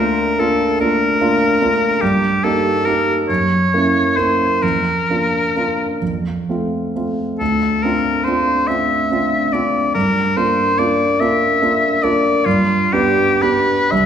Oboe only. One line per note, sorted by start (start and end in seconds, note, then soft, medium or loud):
0.00 0.41 A#4 soft
0.40 0.80 A4 medium
0.81 2.03 A#4 medium
2.01 2.45 G4 medium
2.44 2.87 A4 soft
2.86 3.16 A#4 medium
3.29 4.18 C#5 soft
4.17 4.64 C5 soft
4.62 6.01 A#4 soft
7.39 7.84 A4 soft
7.83 8.26 A#4 soft
8.24 8.69 C5 soft
8.68 9.54 E5 soft
9.53 9.94 D5 soft
9.94 10.38 A#4 medium
10.37 10.80 C5 soft
10.79 11.22 D5 medium
11.20 12.04 E5 soft
12.03 12.47 D5 medium
12.46 12.94 F4 medium
12.93 13.44 G4 medium
13.42 13.93 B4 medium
13.92 14.06 E5 medium